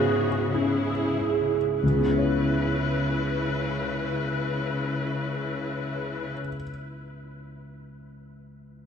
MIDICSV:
0, 0, Header, 1, 5, 480
1, 0, Start_track
1, 0, Key_signature, 4, "minor"
1, 0, Tempo, 1304348
1, 672, Time_signature, 4, 2, 24, 8
1, 3261, End_track
2, 0, Start_track
2, 0, Title_t, "Viola section"
2, 0, Program_c, 0, 48
2, 0, Note_on_c, 0, 66, 43
2, 0, Note_on_c, 0, 68, 38
2, 186, Note_off_c, 0, 68, 0
2, 188, Note_on_c, 0, 64, 36
2, 189, Note_off_c, 0, 66, 0
2, 190, Note_on_c, 0, 68, 35
2, 580, Note_off_c, 0, 64, 0
2, 581, Note_off_c, 0, 68, 0
2, 671, Note_on_c, 0, 71, 29
2, 672, Note_on_c, 0, 64, 27
2, 2327, Note_off_c, 0, 71, 0
2, 2329, Note_off_c, 0, 64, 0
2, 3261, End_track
3, 0, Start_track
3, 0, Title_t, "Grand piano"
3, 0, Program_c, 1, 0
3, 0, Control_c, 1, 64, 127
3, 0, Note_on_c, 1, 44, 33
3, 0, Note_on_c, 1, 59, 30
3, 0, Note_on_c, 1, 61, 29
3, 0, Note_on_c, 1, 64, 30
3, 97, Note_off_c, 1, 44, 0
3, 195, Note_off_c, 1, 61, 0
3, 195, Note_on_c, 1, 61, 30
3, 335, Note_off_c, 1, 59, 0
3, 434, Note_off_c, 1, 64, 0
3, 434, Note_on_c, 1, 64, 22
3, 578, Note_off_c, 1, 61, 0
3, 674, Note_off_c, 1, 64, 0
3, 674, Note_on_c, 1, 37, 21
3, 678, Control_c, 1, 64, 0
3, 699, Note_on_c, 1, 49, 20
3, 726, Note_on_c, 1, 59, 21
3, 742, Control_c, 1, 64, 127
3, 751, Note_on_c, 1, 61, 20
3, 776, Note_on_c, 1, 64, 21
3, 803, Note_on_c, 1, 73, 21
3, 2331, Note_off_c, 1, 37, 0
3, 2356, Note_off_c, 1, 49, 0
3, 2383, Note_off_c, 1, 59, 0
3, 2408, Note_off_c, 1, 61, 0
3, 2433, Note_off_c, 1, 64, 0
3, 2460, Note_off_c, 1, 73, 0
3, 3261, End_track
4, 0, Start_track
4, 0, Title_t, "Harp"
4, 0, Program_c, 2, 46
4, 0, Note_on_c, 2, 49, 36
4, 0, Note_on_c, 2, 56, 31
4, 0, Note_on_c, 2, 61, 30
4, 0, Note_on_c, 2, 64, 29
4, 73, Note_on_c, 2, 63, 24
4, 186, Note_off_c, 2, 64, 0
4, 190, Note_on_c, 2, 64, 33
4, 273, Note_off_c, 2, 63, 0
4, 294, Note_off_c, 2, 49, 0
4, 303, Note_off_c, 2, 61, 0
4, 307, Note_on_c, 2, 61, 24
4, 424, Note_off_c, 2, 56, 0
4, 429, Note_on_c, 2, 56, 24
4, 547, Note_off_c, 2, 61, 0
4, 552, Note_on_c, 2, 61, 19
4, 671, Note_on_c, 2, 49, 22
4, 698, Note_on_c, 2, 59, 21
4, 719, Note_off_c, 2, 61, 0
4, 724, Note_on_c, 2, 61, 21
4, 745, Note_off_c, 2, 64, 0
4, 749, Note_on_c, 2, 64, 21
4, 774, Note_on_c, 2, 73, 21
4, 1864, Note_off_c, 2, 56, 0
4, 2328, Note_off_c, 2, 49, 0
4, 2354, Note_off_c, 2, 59, 0
4, 2381, Note_off_c, 2, 61, 0
4, 2406, Note_off_c, 2, 64, 0
4, 2431, Note_off_c, 2, 73, 0
4, 3261, End_track
5, 0, Start_track
5, 0, Title_t, "Cello section"
5, 0, Program_c, 3, 48
5, 0, Note_on_c, 3, 49, 38
5, 565, Note_off_c, 3, 49, 0
5, 672, Note_on_c, 3, 49, 27
5, 2329, Note_off_c, 3, 49, 0
5, 3261, End_track
0, 0, End_of_file